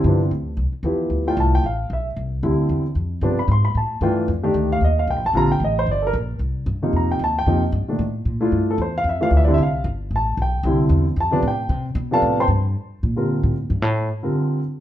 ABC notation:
X:1
M:4/4
L:1/8
Q:"Swing" 1/4=227
K:Gm
V:1 name="Grand piano"
z8 | z g a g f2 =e z | z8 | z =b c' b a2 g z |
z3 f e f g a | b g e c d [AB] z2 | z4 b g a g- | g z6 z |
z A c f =e f (3e d e | f2 z2 a2 g2- | g z3 a2 g2- | g z2 [Adfa]2 [cgac'] z2 |
z8 | z8 |]
V:2 name="Grand piano"
[C,D,F,G,=B,CD=E]2 z4 [F,B,EG]2- | [F,=B,=EG] [A,DEF]3 z4 | z2 [D,G,C=E]3 z3 | [C,F,=B,D] z4 z [=E,A,DF]2 |
z [E,A,DG]3 z4 | [D,G,CF] z6 z | z3 [C,F,B,E]3 z2 | [C,F,B,E] z2 [B,,E,A,D] z3 [A,D=EF]- |
[A,D=EF]2 z3 [=E,A,DF]2 [D,G,CE] | z8 | [D,G,C=E]3 z2 [C,F,=B,D] z2 | z3 [C,F,=B,D]3 z2 |
z3 [D,G,CFB]3 z2 | z3 [D,G,CFB]3 z2 |]
V:3 name="Upright bass" clef=bass
G,,2 D,,2 C,, z =E,,2 | D,,2 C,,2 A,,,2 =B,,,2 | C,,2 D,,2 =E,,2 F,,2 | G,,2 _A,,2 =A,,2 G,,2 |
F,,2 D,,2 E,,2 (3C,, B,,, F,,, | B,,,2 A,,,2 G,,,2 B,,,2 | C,,2 G,,2 F,,2 E,,2 | F,,2 G,, z A,,2 B,,2 |
G,,2 =E,,2 F,,2 D,,2 | C,,2 G,,,2 A,,,2 =B,,,2 | C,,2 =E,,2 F,,2 A,,2 | C,2 =B,,2 A,,2 G,,2 |
z2 B,,3 A,,2 G,, | A,,2 z6 |]